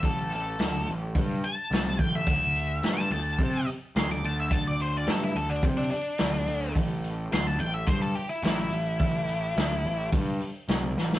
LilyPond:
<<
  \new Staff \with { instrumentName = "Lead electric guitar" } { \time 4/4 \key d \major \tempo 4 = 107 a'8 a'4 r4 a''4 g''16 e''16~ | e''4~ e''16 a''16 a''4 r8 c'''16 d'''16 a''16 e''16 | a''16 d''16 c''16 d''16 a'16 e'16 a'16 d'16 r16 d'16 d'4. | r4 c'''16 a''16 g''16 e''16 c''16 a'16 g'16 e'16 e'4~ |
e'2 r2 | }
  \new Staff \with { instrumentName = "Picked electric bass" } { \clef bass \time 4/4 \key d \major a,,4 d,8 a,,8 g,8 r8 c,8 a,,8 | d,4 g,8 d,8 c8 r8 d,8 d,8 | d,4 g,8 d,8 c8 r8 d,8 d,8 | a,,4 d,8 a,,8 g,8 r8 a,,8 a,,8 |
a,,4 d,8 a,,8 g,8 r8 c,8 a,,8 | }
  \new DrumStaff \with { instrumentName = "Drums" } \drummode { \time 4/4 <hho bd>8 hho8 <hho sn>8 hho8 <hho bd>8 hho8 <hho sn>8 <hho bd>8 | <hho bd>8 hho8 <hho sn>8 hho8 <hho bd>8 hho8 <hho sn>8 hho8 | <hho bd>8 hho8 <hho sn>8 hho8 <hho bd>8 hho8 <hho sn>8 hho8 | <hho bd>8 hho8 <hho sn>8 hho8 <hho bd>8 hho8 <hho sn>8 hho8 |
<hho bd>8 hho8 <hho sn>8 hho8 <hho bd>8 hho8 <hho sn>8 sn16 sn16 | }
>>